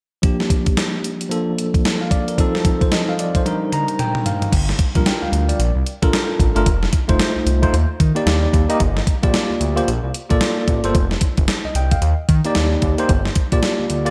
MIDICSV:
0, 0, Header, 1, 4, 480
1, 0, Start_track
1, 0, Key_signature, -2, "minor"
1, 0, Tempo, 535714
1, 209, Time_signature, 4, 2, 24, 8
1, 12636, End_track
2, 0, Start_track
2, 0, Title_t, "Tine electric piano"
2, 0, Program_c, 0, 4
2, 198, Note_on_c, 0, 53, 68
2, 207, Note_on_c, 0, 58, 60
2, 218, Note_on_c, 0, 62, 65
2, 223, Note_on_c, 0, 67, 69
2, 381, Control_c, 0, 64, 127
2, 1144, Note_off_c, 0, 53, 0
2, 1149, Note_off_c, 0, 58, 0
2, 1154, Note_off_c, 0, 62, 0
2, 1156, Note_on_c, 0, 53, 70
2, 1157, Note_off_c, 0, 67, 0
2, 1163, Note_on_c, 0, 58, 62
2, 1172, Note_on_c, 0, 62, 62
2, 1177, Note_on_c, 0, 69, 75
2, 1180, Control_c, 0, 64, 0
2, 1355, Control_c, 0, 64, 127
2, 1644, Note_off_c, 0, 69, 0
2, 1802, Note_on_c, 0, 77, 68
2, 1889, Note_off_c, 0, 77, 0
2, 1891, Note_on_c, 0, 74, 68
2, 2028, Note_off_c, 0, 74, 0
2, 2044, Note_on_c, 0, 70, 59
2, 2103, Note_off_c, 0, 53, 0
2, 2107, Note_off_c, 0, 58, 0
2, 2111, Note_off_c, 0, 62, 0
2, 2132, Note_on_c, 0, 53, 73
2, 2136, Note_on_c, 0, 60, 63
2, 2141, Control_c, 0, 64, 0
2, 2144, Note_on_c, 0, 63, 66
2, 2152, Note_on_c, 0, 69, 76
2, 2267, Note_off_c, 0, 70, 0
2, 2292, Control_c, 0, 64, 127
2, 2522, Note_on_c, 0, 72, 60
2, 2608, Note_off_c, 0, 72, 0
2, 2618, Note_on_c, 0, 75, 65
2, 2752, Note_off_c, 0, 75, 0
2, 2767, Note_on_c, 0, 77, 74
2, 2851, Note_off_c, 0, 77, 0
2, 2867, Note_on_c, 0, 74, 65
2, 2997, Note_off_c, 0, 74, 0
2, 3013, Note_on_c, 0, 72, 60
2, 3071, Note_off_c, 0, 53, 0
2, 3073, Note_off_c, 0, 60, 0
2, 3077, Note_off_c, 0, 63, 0
2, 3082, Note_off_c, 0, 69, 0
2, 3089, Note_on_c, 0, 55, 67
2, 3098, Note_on_c, 0, 62, 60
2, 3099, Control_c, 0, 64, 0
2, 3104, Note_on_c, 0, 63, 68
2, 3111, Note_on_c, 0, 70, 74
2, 3232, Note_off_c, 0, 72, 0
2, 3249, Control_c, 0, 64, 127
2, 3346, Note_on_c, 0, 82, 73
2, 3561, Note_off_c, 0, 82, 0
2, 3585, Note_on_c, 0, 79, 75
2, 3801, Note_off_c, 0, 79, 0
2, 3817, Note_on_c, 0, 77, 67
2, 4030, Note_off_c, 0, 55, 0
2, 4034, Note_off_c, 0, 62, 0
2, 4036, Note_off_c, 0, 77, 0
2, 4038, Note_off_c, 0, 63, 0
2, 4041, Note_off_c, 0, 70, 0
2, 4061, Control_c, 0, 64, 0
2, 4227, Control_c, 0, 64, 127
2, 4434, Note_on_c, 0, 55, 77
2, 4439, Note_on_c, 0, 62, 70
2, 4445, Note_on_c, 0, 65, 67
2, 4449, Note_on_c, 0, 70, 83
2, 4538, Note_on_c, 0, 79, 66
2, 4671, Note_off_c, 0, 79, 0
2, 4678, Note_on_c, 0, 77, 75
2, 4733, Note_off_c, 0, 55, 0
2, 4736, Note_off_c, 0, 62, 0
2, 4738, Note_off_c, 0, 65, 0
2, 4741, Note_off_c, 0, 70, 0
2, 4904, Note_off_c, 0, 77, 0
2, 4917, Note_on_c, 0, 74, 67
2, 5019, Control_c, 0, 64, 0
2, 5144, Note_off_c, 0, 74, 0
2, 5198, Control_c, 0, 64, 127
2, 5396, Note_on_c, 0, 69, 78
2, 5399, Note_on_c, 0, 62, 77
2, 5402, Note_on_c, 0, 65, 77
2, 5407, Note_on_c, 0, 70, 92
2, 5694, Note_off_c, 0, 69, 0
2, 5695, Note_off_c, 0, 62, 0
2, 5697, Note_off_c, 0, 65, 0
2, 5700, Note_off_c, 0, 70, 0
2, 5872, Note_on_c, 0, 57, 92
2, 5873, Note_on_c, 0, 62, 80
2, 5876, Note_on_c, 0, 65, 84
2, 5881, Note_on_c, 0, 70, 94
2, 5968, Note_off_c, 0, 57, 0
2, 5968, Note_off_c, 0, 62, 0
2, 5970, Note_off_c, 0, 65, 0
2, 5973, Note_off_c, 0, 70, 0
2, 5982, Control_c, 0, 64, 0
2, 6157, Control_c, 0, 64, 127
2, 6345, Note_on_c, 0, 57, 91
2, 6351, Note_on_c, 0, 63, 76
2, 6354, Note_on_c, 0, 65, 77
2, 6356, Note_on_c, 0, 72, 92
2, 6649, Note_off_c, 0, 57, 0
2, 6651, Note_off_c, 0, 63, 0
2, 6653, Note_off_c, 0, 65, 0
2, 6654, Note_off_c, 0, 72, 0
2, 6828, Note_on_c, 0, 57, 82
2, 6833, Note_on_c, 0, 63, 78
2, 6837, Note_on_c, 0, 65, 78
2, 6839, Note_on_c, 0, 72, 97
2, 6926, Note_off_c, 0, 57, 0
2, 6928, Note_off_c, 0, 63, 0
2, 6930, Note_off_c, 0, 65, 0
2, 6932, Note_off_c, 0, 72, 0
2, 6939, Control_c, 0, 64, 0
2, 7112, Control_c, 0, 64, 127
2, 7302, Note_on_c, 0, 58, 86
2, 7307, Note_on_c, 0, 63, 73
2, 7310, Note_on_c, 0, 67, 86
2, 7315, Note_on_c, 0, 74, 93
2, 7607, Note_off_c, 0, 58, 0
2, 7610, Note_off_c, 0, 63, 0
2, 7611, Note_off_c, 0, 67, 0
2, 7613, Note_off_c, 0, 74, 0
2, 7787, Note_on_c, 0, 58, 96
2, 7791, Note_on_c, 0, 63, 86
2, 7794, Note_on_c, 0, 67, 82
2, 7796, Note_on_c, 0, 75, 100
2, 7885, Note_off_c, 0, 58, 0
2, 7887, Note_off_c, 0, 63, 0
2, 7889, Note_off_c, 0, 67, 0
2, 7890, Note_off_c, 0, 75, 0
2, 7899, Control_c, 0, 64, 0
2, 8066, Control_c, 0, 64, 127
2, 8268, Note_on_c, 0, 58, 82
2, 8269, Note_on_c, 0, 65, 72
2, 8275, Note_on_c, 0, 67, 71
2, 8277, Note_on_c, 0, 74, 84
2, 8570, Note_off_c, 0, 58, 0
2, 8570, Note_off_c, 0, 65, 0
2, 8573, Note_off_c, 0, 67, 0
2, 8574, Note_off_c, 0, 74, 0
2, 8745, Note_on_c, 0, 58, 90
2, 8748, Note_on_c, 0, 65, 81
2, 8751, Note_on_c, 0, 67, 79
2, 8758, Note_on_c, 0, 72, 88
2, 8845, Note_off_c, 0, 58, 0
2, 8846, Note_off_c, 0, 65, 0
2, 8847, Note_off_c, 0, 67, 0
2, 8851, Note_off_c, 0, 72, 0
2, 8860, Control_c, 0, 64, 0
2, 8997, Control_c, 0, 64, 127
2, 9224, Note_on_c, 0, 58, 84
2, 9226, Note_on_c, 0, 65, 78
2, 9232, Note_on_c, 0, 69, 70
2, 9234, Note_on_c, 0, 74, 90
2, 9528, Note_off_c, 0, 58, 0
2, 9529, Note_off_c, 0, 65, 0
2, 9532, Note_off_c, 0, 69, 0
2, 9533, Note_off_c, 0, 74, 0
2, 9711, Note_on_c, 0, 58, 82
2, 9712, Note_on_c, 0, 65, 79
2, 9716, Note_on_c, 0, 69, 76
2, 9722, Note_on_c, 0, 72, 94
2, 9807, Note_off_c, 0, 58, 0
2, 9808, Note_off_c, 0, 65, 0
2, 9810, Note_off_c, 0, 69, 0
2, 9813, Note_off_c, 0, 72, 0
2, 9821, Control_c, 0, 64, 0
2, 10001, Control_c, 0, 64, 127
2, 10439, Note_on_c, 0, 75, 67
2, 10527, Note_off_c, 0, 75, 0
2, 10537, Note_on_c, 0, 79, 77
2, 10671, Note_off_c, 0, 79, 0
2, 10676, Note_on_c, 0, 77, 64
2, 10782, Control_c, 0, 64, 0
2, 10903, Note_off_c, 0, 77, 0
2, 10947, Control_c, 0, 64, 127
2, 11154, Note_on_c, 0, 58, 79
2, 11157, Note_on_c, 0, 63, 80
2, 11161, Note_on_c, 0, 67, 82
2, 11167, Note_on_c, 0, 74, 94
2, 11453, Note_off_c, 0, 58, 0
2, 11455, Note_off_c, 0, 63, 0
2, 11456, Note_off_c, 0, 67, 0
2, 11460, Note_off_c, 0, 74, 0
2, 11632, Note_on_c, 0, 58, 87
2, 11637, Note_on_c, 0, 63, 78
2, 11643, Note_on_c, 0, 67, 80
2, 11644, Note_on_c, 0, 72, 100
2, 11728, Note_off_c, 0, 58, 0
2, 11731, Note_off_c, 0, 63, 0
2, 11733, Note_off_c, 0, 67, 0
2, 11734, Note_off_c, 0, 72, 0
2, 11741, Control_c, 0, 64, 0
2, 11873, Control_c, 0, 64, 127
2, 12111, Note_on_c, 0, 58, 80
2, 12112, Note_on_c, 0, 65, 69
2, 12117, Note_on_c, 0, 67, 69
2, 12121, Note_on_c, 0, 74, 87
2, 12411, Note_off_c, 0, 58, 0
2, 12412, Note_off_c, 0, 65, 0
2, 12414, Note_off_c, 0, 67, 0
2, 12416, Note_off_c, 0, 74, 0
2, 12589, Note_on_c, 0, 58, 87
2, 12593, Note_on_c, 0, 65, 74
2, 12596, Note_on_c, 0, 67, 77
2, 12601, Note_on_c, 0, 74, 97
2, 12636, Note_off_c, 0, 58, 0
2, 12636, Note_off_c, 0, 65, 0
2, 12636, Note_off_c, 0, 67, 0
2, 12636, Note_off_c, 0, 74, 0
2, 12636, End_track
3, 0, Start_track
3, 0, Title_t, "Analog synth bass"
3, 0, Program_c, 1, 38
3, 4055, Note_on_c, 1, 31, 105
3, 4235, Note_off_c, 1, 31, 0
3, 4439, Note_on_c, 1, 34, 83
3, 4509, Note_off_c, 1, 34, 0
3, 4680, Note_on_c, 1, 38, 47
3, 4716, Note_off_c, 1, 38, 0
3, 4769, Note_on_c, 1, 38, 85
3, 4951, Note_off_c, 1, 38, 0
3, 5010, Note_on_c, 1, 34, 105
3, 5120, Note_off_c, 1, 34, 0
3, 5156, Note_on_c, 1, 36, 82
3, 5227, Note_off_c, 1, 36, 0
3, 5400, Note_on_c, 1, 34, 87
3, 5470, Note_off_c, 1, 34, 0
3, 5730, Note_on_c, 1, 33, 91
3, 5840, Note_off_c, 1, 33, 0
3, 5876, Note_on_c, 1, 31, 90
3, 5948, Note_off_c, 1, 31, 0
3, 5970, Note_on_c, 1, 29, 98
3, 6152, Note_off_c, 1, 29, 0
3, 6355, Note_on_c, 1, 31, 86
3, 6427, Note_off_c, 1, 31, 0
3, 6593, Note_on_c, 1, 36, 45
3, 6631, Note_off_c, 1, 36, 0
3, 6686, Note_on_c, 1, 36, 80
3, 6869, Note_off_c, 1, 36, 0
3, 6928, Note_on_c, 1, 39, 113
3, 7038, Note_off_c, 1, 39, 0
3, 7168, Note_on_c, 1, 51, 90
3, 7279, Note_off_c, 1, 51, 0
3, 7403, Note_on_c, 1, 39, 88
3, 7588, Note_off_c, 1, 39, 0
3, 7645, Note_on_c, 1, 39, 94
3, 7757, Note_off_c, 1, 39, 0
3, 7889, Note_on_c, 1, 31, 108
3, 8071, Note_off_c, 1, 31, 0
3, 8274, Note_on_c, 1, 34, 93
3, 8346, Note_off_c, 1, 34, 0
3, 8511, Note_on_c, 1, 38, 45
3, 8550, Note_off_c, 1, 38, 0
3, 8604, Note_on_c, 1, 38, 96
3, 8788, Note_off_c, 1, 38, 0
3, 8848, Note_on_c, 1, 34, 104
3, 8959, Note_off_c, 1, 34, 0
3, 8993, Note_on_c, 1, 36, 88
3, 9065, Note_off_c, 1, 36, 0
3, 9238, Note_on_c, 1, 34, 83
3, 9309, Note_off_c, 1, 34, 0
3, 9565, Note_on_c, 1, 33, 97
3, 9677, Note_off_c, 1, 33, 0
3, 9716, Note_on_c, 1, 31, 89
3, 9787, Note_off_c, 1, 31, 0
3, 9813, Note_on_c, 1, 29, 111
3, 9994, Note_off_c, 1, 29, 0
3, 10196, Note_on_c, 1, 31, 94
3, 10267, Note_off_c, 1, 31, 0
3, 10434, Note_on_c, 1, 36, 46
3, 10472, Note_off_c, 1, 36, 0
3, 10527, Note_on_c, 1, 36, 85
3, 10710, Note_off_c, 1, 36, 0
3, 10766, Note_on_c, 1, 39, 113
3, 10877, Note_off_c, 1, 39, 0
3, 11009, Note_on_c, 1, 51, 90
3, 11119, Note_off_c, 1, 51, 0
3, 11252, Note_on_c, 1, 39, 88
3, 11433, Note_off_c, 1, 39, 0
3, 11490, Note_on_c, 1, 39, 92
3, 11600, Note_off_c, 1, 39, 0
3, 11731, Note_on_c, 1, 31, 102
3, 11912, Note_off_c, 1, 31, 0
3, 12119, Note_on_c, 1, 34, 88
3, 12189, Note_off_c, 1, 34, 0
3, 12358, Note_on_c, 1, 38, 49
3, 12395, Note_off_c, 1, 38, 0
3, 12453, Note_on_c, 1, 38, 92
3, 12634, Note_off_c, 1, 38, 0
3, 12636, End_track
4, 0, Start_track
4, 0, Title_t, "Drums"
4, 208, Note_on_c, 9, 42, 69
4, 209, Note_on_c, 9, 36, 97
4, 297, Note_off_c, 9, 42, 0
4, 298, Note_off_c, 9, 36, 0
4, 360, Note_on_c, 9, 38, 57
4, 449, Note_on_c, 9, 36, 87
4, 450, Note_off_c, 9, 38, 0
4, 450, Note_on_c, 9, 42, 77
4, 539, Note_off_c, 9, 36, 0
4, 540, Note_off_c, 9, 42, 0
4, 594, Note_on_c, 9, 42, 46
4, 596, Note_on_c, 9, 36, 79
4, 684, Note_off_c, 9, 42, 0
4, 686, Note_off_c, 9, 36, 0
4, 692, Note_on_c, 9, 38, 113
4, 692, Note_on_c, 9, 42, 65
4, 781, Note_off_c, 9, 42, 0
4, 782, Note_off_c, 9, 38, 0
4, 935, Note_on_c, 9, 42, 77
4, 1025, Note_off_c, 9, 42, 0
4, 1083, Note_on_c, 9, 42, 46
4, 1172, Note_off_c, 9, 42, 0
4, 1177, Note_on_c, 9, 42, 67
4, 1267, Note_off_c, 9, 42, 0
4, 1420, Note_on_c, 9, 42, 66
4, 1510, Note_off_c, 9, 42, 0
4, 1562, Note_on_c, 9, 36, 84
4, 1564, Note_on_c, 9, 42, 50
4, 1651, Note_off_c, 9, 36, 0
4, 1654, Note_off_c, 9, 42, 0
4, 1660, Note_on_c, 9, 38, 115
4, 1660, Note_on_c, 9, 42, 50
4, 1749, Note_off_c, 9, 42, 0
4, 1750, Note_off_c, 9, 38, 0
4, 1891, Note_on_c, 9, 36, 80
4, 1896, Note_on_c, 9, 42, 59
4, 1981, Note_off_c, 9, 36, 0
4, 1985, Note_off_c, 9, 42, 0
4, 2043, Note_on_c, 9, 42, 47
4, 2133, Note_off_c, 9, 42, 0
4, 2134, Note_on_c, 9, 36, 93
4, 2136, Note_on_c, 9, 42, 70
4, 2224, Note_off_c, 9, 36, 0
4, 2226, Note_off_c, 9, 42, 0
4, 2285, Note_on_c, 9, 38, 58
4, 2373, Note_on_c, 9, 36, 93
4, 2373, Note_on_c, 9, 42, 74
4, 2374, Note_off_c, 9, 38, 0
4, 2462, Note_off_c, 9, 36, 0
4, 2463, Note_off_c, 9, 42, 0
4, 2520, Note_on_c, 9, 36, 82
4, 2521, Note_on_c, 9, 42, 43
4, 2610, Note_off_c, 9, 36, 0
4, 2611, Note_off_c, 9, 42, 0
4, 2613, Note_on_c, 9, 42, 64
4, 2614, Note_on_c, 9, 38, 106
4, 2703, Note_off_c, 9, 42, 0
4, 2704, Note_off_c, 9, 38, 0
4, 2858, Note_on_c, 9, 42, 72
4, 2948, Note_off_c, 9, 42, 0
4, 3000, Note_on_c, 9, 36, 83
4, 3004, Note_on_c, 9, 42, 47
4, 3090, Note_off_c, 9, 36, 0
4, 3094, Note_off_c, 9, 42, 0
4, 3099, Note_on_c, 9, 48, 50
4, 3101, Note_on_c, 9, 42, 66
4, 3188, Note_off_c, 9, 48, 0
4, 3191, Note_off_c, 9, 42, 0
4, 3337, Note_on_c, 9, 47, 65
4, 3339, Note_on_c, 9, 42, 62
4, 3426, Note_off_c, 9, 47, 0
4, 3428, Note_off_c, 9, 42, 0
4, 3479, Note_on_c, 9, 42, 49
4, 3569, Note_off_c, 9, 42, 0
4, 3577, Note_on_c, 9, 42, 53
4, 3577, Note_on_c, 9, 45, 77
4, 3667, Note_off_c, 9, 42, 0
4, 3667, Note_off_c, 9, 45, 0
4, 3718, Note_on_c, 9, 45, 69
4, 3807, Note_off_c, 9, 45, 0
4, 3816, Note_on_c, 9, 42, 67
4, 3816, Note_on_c, 9, 43, 84
4, 3905, Note_off_c, 9, 42, 0
4, 3905, Note_off_c, 9, 43, 0
4, 3961, Note_on_c, 9, 42, 52
4, 3962, Note_on_c, 9, 43, 75
4, 4051, Note_off_c, 9, 42, 0
4, 4051, Note_off_c, 9, 43, 0
4, 4054, Note_on_c, 9, 36, 100
4, 4056, Note_on_c, 9, 42, 78
4, 4056, Note_on_c, 9, 49, 87
4, 4144, Note_off_c, 9, 36, 0
4, 4145, Note_off_c, 9, 42, 0
4, 4145, Note_off_c, 9, 49, 0
4, 4203, Note_on_c, 9, 38, 57
4, 4290, Note_on_c, 9, 42, 77
4, 4292, Note_on_c, 9, 36, 95
4, 4293, Note_off_c, 9, 38, 0
4, 4380, Note_off_c, 9, 42, 0
4, 4382, Note_off_c, 9, 36, 0
4, 4438, Note_on_c, 9, 42, 46
4, 4440, Note_on_c, 9, 36, 84
4, 4527, Note_off_c, 9, 42, 0
4, 4529, Note_off_c, 9, 36, 0
4, 4534, Note_on_c, 9, 42, 62
4, 4535, Note_on_c, 9, 38, 103
4, 4624, Note_off_c, 9, 42, 0
4, 4625, Note_off_c, 9, 38, 0
4, 4776, Note_on_c, 9, 42, 75
4, 4865, Note_off_c, 9, 42, 0
4, 4921, Note_on_c, 9, 42, 50
4, 5011, Note_off_c, 9, 42, 0
4, 5015, Note_on_c, 9, 42, 69
4, 5104, Note_off_c, 9, 42, 0
4, 5255, Note_on_c, 9, 42, 61
4, 5345, Note_off_c, 9, 42, 0
4, 5399, Note_on_c, 9, 42, 51
4, 5400, Note_on_c, 9, 36, 94
4, 5489, Note_off_c, 9, 36, 0
4, 5489, Note_off_c, 9, 42, 0
4, 5496, Note_on_c, 9, 38, 109
4, 5496, Note_on_c, 9, 42, 54
4, 5585, Note_off_c, 9, 42, 0
4, 5586, Note_off_c, 9, 38, 0
4, 5730, Note_on_c, 9, 36, 88
4, 5735, Note_on_c, 9, 42, 59
4, 5820, Note_off_c, 9, 36, 0
4, 5824, Note_off_c, 9, 42, 0
4, 5878, Note_on_c, 9, 42, 47
4, 5967, Note_off_c, 9, 42, 0
4, 5969, Note_on_c, 9, 42, 75
4, 5971, Note_on_c, 9, 36, 100
4, 6059, Note_off_c, 9, 42, 0
4, 6061, Note_off_c, 9, 36, 0
4, 6117, Note_on_c, 9, 38, 58
4, 6206, Note_on_c, 9, 42, 79
4, 6207, Note_off_c, 9, 38, 0
4, 6208, Note_on_c, 9, 36, 84
4, 6296, Note_off_c, 9, 42, 0
4, 6298, Note_off_c, 9, 36, 0
4, 6351, Note_on_c, 9, 42, 47
4, 6355, Note_on_c, 9, 36, 85
4, 6441, Note_off_c, 9, 42, 0
4, 6445, Note_off_c, 9, 36, 0
4, 6446, Note_on_c, 9, 42, 61
4, 6447, Note_on_c, 9, 38, 109
4, 6536, Note_off_c, 9, 42, 0
4, 6537, Note_off_c, 9, 38, 0
4, 6690, Note_on_c, 9, 42, 77
4, 6779, Note_off_c, 9, 42, 0
4, 6835, Note_on_c, 9, 36, 89
4, 6836, Note_on_c, 9, 42, 53
4, 6925, Note_off_c, 9, 36, 0
4, 6926, Note_off_c, 9, 42, 0
4, 6933, Note_on_c, 9, 42, 71
4, 7023, Note_off_c, 9, 42, 0
4, 7168, Note_on_c, 9, 36, 88
4, 7171, Note_on_c, 9, 42, 69
4, 7258, Note_off_c, 9, 36, 0
4, 7260, Note_off_c, 9, 42, 0
4, 7313, Note_on_c, 9, 42, 48
4, 7402, Note_off_c, 9, 42, 0
4, 7408, Note_on_c, 9, 38, 119
4, 7408, Note_on_c, 9, 42, 58
4, 7497, Note_off_c, 9, 42, 0
4, 7498, Note_off_c, 9, 38, 0
4, 7647, Note_on_c, 9, 36, 86
4, 7650, Note_on_c, 9, 42, 63
4, 7736, Note_off_c, 9, 36, 0
4, 7740, Note_off_c, 9, 42, 0
4, 7792, Note_on_c, 9, 42, 54
4, 7882, Note_off_c, 9, 42, 0
4, 7886, Note_on_c, 9, 42, 72
4, 7888, Note_on_c, 9, 36, 103
4, 7975, Note_off_c, 9, 42, 0
4, 7977, Note_off_c, 9, 36, 0
4, 8034, Note_on_c, 9, 38, 62
4, 8124, Note_off_c, 9, 38, 0
4, 8127, Note_on_c, 9, 36, 89
4, 8127, Note_on_c, 9, 42, 79
4, 8217, Note_off_c, 9, 36, 0
4, 8217, Note_off_c, 9, 42, 0
4, 8272, Note_on_c, 9, 42, 46
4, 8274, Note_on_c, 9, 36, 87
4, 8361, Note_off_c, 9, 42, 0
4, 8364, Note_off_c, 9, 36, 0
4, 8367, Note_on_c, 9, 38, 107
4, 8367, Note_on_c, 9, 42, 62
4, 8456, Note_off_c, 9, 42, 0
4, 8457, Note_off_c, 9, 38, 0
4, 8609, Note_on_c, 9, 42, 71
4, 8699, Note_off_c, 9, 42, 0
4, 8757, Note_on_c, 9, 42, 49
4, 8846, Note_off_c, 9, 42, 0
4, 8854, Note_on_c, 9, 42, 72
4, 8943, Note_off_c, 9, 42, 0
4, 9089, Note_on_c, 9, 42, 69
4, 9179, Note_off_c, 9, 42, 0
4, 9232, Note_on_c, 9, 42, 46
4, 9237, Note_on_c, 9, 36, 88
4, 9322, Note_off_c, 9, 42, 0
4, 9325, Note_on_c, 9, 42, 54
4, 9326, Note_off_c, 9, 36, 0
4, 9326, Note_on_c, 9, 38, 117
4, 9415, Note_off_c, 9, 42, 0
4, 9416, Note_off_c, 9, 38, 0
4, 9567, Note_on_c, 9, 36, 84
4, 9567, Note_on_c, 9, 42, 65
4, 9656, Note_off_c, 9, 36, 0
4, 9656, Note_off_c, 9, 42, 0
4, 9711, Note_on_c, 9, 42, 52
4, 9801, Note_off_c, 9, 42, 0
4, 9808, Note_on_c, 9, 42, 70
4, 9810, Note_on_c, 9, 36, 107
4, 9898, Note_off_c, 9, 42, 0
4, 9899, Note_off_c, 9, 36, 0
4, 9955, Note_on_c, 9, 38, 60
4, 10043, Note_on_c, 9, 42, 82
4, 10045, Note_off_c, 9, 38, 0
4, 10048, Note_on_c, 9, 36, 87
4, 10133, Note_off_c, 9, 42, 0
4, 10138, Note_off_c, 9, 36, 0
4, 10191, Note_on_c, 9, 42, 46
4, 10196, Note_on_c, 9, 36, 90
4, 10281, Note_off_c, 9, 42, 0
4, 10285, Note_off_c, 9, 36, 0
4, 10285, Note_on_c, 9, 42, 64
4, 10286, Note_on_c, 9, 38, 103
4, 10375, Note_off_c, 9, 42, 0
4, 10376, Note_off_c, 9, 38, 0
4, 10529, Note_on_c, 9, 42, 81
4, 10618, Note_off_c, 9, 42, 0
4, 10675, Note_on_c, 9, 42, 54
4, 10676, Note_on_c, 9, 36, 82
4, 10764, Note_off_c, 9, 42, 0
4, 10766, Note_off_c, 9, 36, 0
4, 10769, Note_on_c, 9, 42, 66
4, 10859, Note_off_c, 9, 42, 0
4, 11009, Note_on_c, 9, 36, 88
4, 11009, Note_on_c, 9, 42, 66
4, 11098, Note_off_c, 9, 42, 0
4, 11099, Note_off_c, 9, 36, 0
4, 11151, Note_on_c, 9, 42, 50
4, 11240, Note_off_c, 9, 42, 0
4, 11244, Note_on_c, 9, 42, 50
4, 11245, Note_on_c, 9, 38, 124
4, 11334, Note_off_c, 9, 42, 0
4, 11335, Note_off_c, 9, 38, 0
4, 11486, Note_on_c, 9, 42, 66
4, 11489, Note_on_c, 9, 36, 90
4, 11576, Note_off_c, 9, 42, 0
4, 11578, Note_off_c, 9, 36, 0
4, 11633, Note_on_c, 9, 42, 49
4, 11723, Note_off_c, 9, 42, 0
4, 11729, Note_on_c, 9, 42, 72
4, 11731, Note_on_c, 9, 36, 102
4, 11819, Note_off_c, 9, 42, 0
4, 11820, Note_off_c, 9, 36, 0
4, 11876, Note_on_c, 9, 38, 59
4, 11966, Note_off_c, 9, 38, 0
4, 11966, Note_on_c, 9, 42, 80
4, 11969, Note_on_c, 9, 36, 90
4, 12056, Note_off_c, 9, 42, 0
4, 12059, Note_off_c, 9, 36, 0
4, 12114, Note_on_c, 9, 42, 49
4, 12117, Note_on_c, 9, 36, 78
4, 12203, Note_off_c, 9, 42, 0
4, 12207, Note_off_c, 9, 36, 0
4, 12209, Note_on_c, 9, 42, 63
4, 12210, Note_on_c, 9, 38, 106
4, 12299, Note_off_c, 9, 42, 0
4, 12300, Note_off_c, 9, 38, 0
4, 12452, Note_on_c, 9, 42, 74
4, 12541, Note_off_c, 9, 42, 0
4, 12600, Note_on_c, 9, 42, 50
4, 12636, Note_off_c, 9, 42, 0
4, 12636, End_track
0, 0, End_of_file